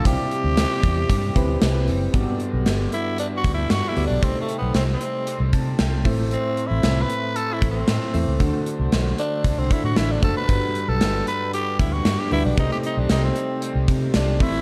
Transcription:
<<
  \new Staff \with { instrumentName = "Marimba" } { \time 4/4 \key g \major \tempo 4 = 115 g''2. r4 | r1 | r1 | r1 |
r1 | r1 | r1 | }
  \new Staff \with { instrumentName = "Synth keys" } { \time 4/4 \key g \major << { r1 | r1 | r2 r8 a''8 g''8 e''8 | r1 |
r1 | r1 | r1 | } \\ { <c c' e' g' d''>4. r4 <c' e' g' b'>4 r8 | <g, b fis' g' d''>4. r2 <b fis' g' d''>8 | <c a ees' g' c''>4. r2 <a, a c' e' c''>8~ | <a, a c' e' c''>4 r2 r8 <a c' e' c''>8 |
<d a d' fis' c''>4. r2 <a d' fis' c''>8 | <g, g d' fis' b'>4. r2 <g d' fis' b'>8 | <c a ees' g' c''>4. r2 <a, a c' e' c''>8 | } >> }
  \new Staff \with { instrumentName = "Tenor saxophone" } { \time 4/4 \key g \major g'2. r4 | r4. e'8 \tuplet 3/2 { d'8 fis'8 e'8 fis'8 e'8 d'8 } | \tuplet 3/2 { c'8 a8 b8 c'8 c'4~ } c'16 r4. r16 | \tuplet 3/2 { c'4 e'8~ e'8 b'4 a'8 e'8 c'8~ } c'4~ |
c'16 r4 r16 d'8. c'16 e'16 fis'16 e'16 d'16 a'16 b'16~ | b'8. a'8. b'8 g'8 e'16 fis'8 g'16 e'16 d'16 | ees'16 g'16 ees'16 d'16 ees'16 c'4 r8. d'8 e'8 | }
  \new Staff \with { instrumentName = "Overdriven electric guitar" } { \clef bass \time 4/4 \key g \major <c g c'>4 <c g c'>4 <c g c'>4. <g c'>8 | <g, d g>2 <g, d g>4. <d g>8 | <c g c'>2 <c g c'>4. <e a>8 | <a, e a>2 <a, e a>4. <e a>8 |
<d a d'>2 <d a d'>4. <a d'>8 | <g, d g>2 <g, d g>4. <d g>8 | <c g c'>2 <c g c'>4. <e a>8 | }
  \new Staff \with { instrumentName = "Fingered electric bass" } { \clef bass \time 4/4 \key g \major c,16 r8 d,8 r16 e,8 g,8 d,8 c,8 fis,,8 | g,,16 r8 b,,16 g,,8 r4 d,8 g,16 r16 d,16 b,,16 | c,16 r8 b,,16 c,8 r8. c,16 c8 c,8 a,,8~ | a,,16 r8 a,,16 c,8 r4 a,,8 a,16 r16 e,16 cis,16 |
d,16 r8 c,16 b,,8 r8 c,16 c,16 r16 a,16 a,,8 fis,,16 r16 | g,,16 r8 b,,16 g,,8 r4 d,8 g,16 r16 d,16 b,,16 | c,16 r8 b,,16 c,8 r8. c,16 c8 c,8 a,,8 | }
  \new DrumStaff \with { instrumentName = "Drums" } \drummode { \time 4/4 <hh bd>8 hh8 <hh sn tamb>8 <hh bd>8 <hh bd>8 <hh bd>8 <hh sn tamb>8 hho8 | <hh bd>8 hh8 <hh sn>8 hh8 hh8 <hh bd>8 <hh sn>8 hho8 | <hh bd>8 hh8 <hh sn>8 hh8 hh8 <hh bd>8 <hh sn>8 <hho bd>8 | hh8 hh8 <hh sn>8 hh8 hh8 <hh bd>8 <hh sn>8 hho8 |
<hh bd>8 hh8 <hh sn>8 hh8 <hh bd>8 <hh bd>8 <hh sn>8 <hh bd>8 | <hh bd>8 hh8 <hh sn>8 hh8 hh8 <hh bd>8 <hh sn>8 hho8 | <hh bd>8 hh8 <hh sn tamb>8 hh8 hh8 <hh bd>8 <hh sn tamb>8 <hho bd>8 | }
>>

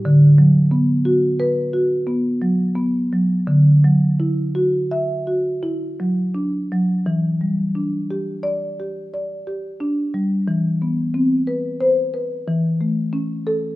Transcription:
<<
  \new Staff \with { instrumentName = "Marimba" } { \time 5/4 \key e \minor \tempo 4 = 89 r2 b'4 r2 | r2 e''4 r2 | r2 d''4 r2 | r2 c''4 r4. a'8 | }
  \new Staff \with { instrumentName = "Marimba" } { \time 5/4 \key e \minor d8 fis8 b8 fis'4 fis'8 b8 fis8 b8 fis8 | d8 fis8 e'8 fis'4 fis'8 e'8 fis8 d'8 fis8 | e8 g8 d'8 g'4 g'8 d''8 g'8 d'8 g8 | e8 b8 c'8 b'4 b'8 e8 a8 cis'4 | }
>>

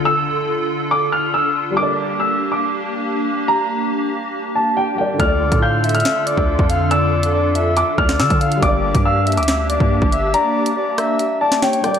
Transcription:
<<
  \new Staff \with { instrumentName = "Grand piano" } { \time 4/4 \key g \dorian \tempo 4 = 140 e'''2 d'''8 f'''8 e'''4 | d'''4 e'''8. d'''2~ d'''16 | bes''2~ bes''8 a''8 g''8 g''8 | f'''4 g'''8. f'''2~ f'''16 |
e'''2 d'''8 f'''8 e'''4 | d'''4 e'''8. d'''2~ d'''16 | bes''2~ bes''8 a''8 g''8 g''8 | }
  \new Staff \with { instrumentName = "Soft synth lead" } { \time 4/4 \key g \dorian r1 | r1 | r1 | d''4 f''8 e''4 d''4 f''8 |
d''4 d''8 e''4 d''4 f''8 | d''4 f''8 e''4 d''4 e''8 | d''4 d''8 e''4 d''8 cis''8 d''8 | }
  \new Staff \with { instrumentName = "Grand piano" } { \time 4/4 \key g \dorian <d a f' d''>1 | <g g' bes' d''>1~ | <g g' bes' d''>2.~ <g g' bes' d''>8 <g g' bes' d''>8 | <d a f' d''>1~ |
<d a f' d''>1 | <g g' bes' d''>1~ | <g g' bes' d''>2.~ <g g' bes' d''>8 <g g' bes' d''>8 | }
  \new Staff \with { instrumentName = "Analog synth pad" } { \time 4/4 \key g \dorian <d d' f' a'>1 | <bes g'>1~ | <bes g'>1 | <d d' f' a'>1~ |
<d d' f' a'>1 | <bes d' g'>1~ | <bes d' g'>1 | }
  \new Staff \with { instrumentName = "808-style bass" } { \clef bass \time 4/4 \key g \dorian r1 | r1 | r1 | d,8 cis,16 a,4~ a,16 r8. d,8 f,8.~ |
f,2~ f,16 r16 d,8 d16 d8. | g,,8. g,4 d,4 g,8 g,,8. | r1 | }
  \new DrumStaff \with { instrumentName = "Drums" } \drummode { \time 4/4 r4 r4 r4 r4 | r4 r4 r4 r4 | r4 r4 r4 r4 | <hh bd>8. <hh bd>16 r8 hh32 hh32 hh32 hh32 <hh sn>8 hh16 bd16 r16 bd16 hh8 |
hh8. hh16 r8 hh8 hh8 bd16 <hh sn>16 sn16 <hh bd>16 hh16 hh16 | <hh bd>8. <hh bd>16 r8 hh32 hh32 hh32 hh32 <hh sn>8 hh16 bd16 r16 bd16 hh8 | hh8. hh16 r8 <hh ss>8 hh8. <hh sn>16 sn16 hh16 <hh ss>16 hh16 | }
>>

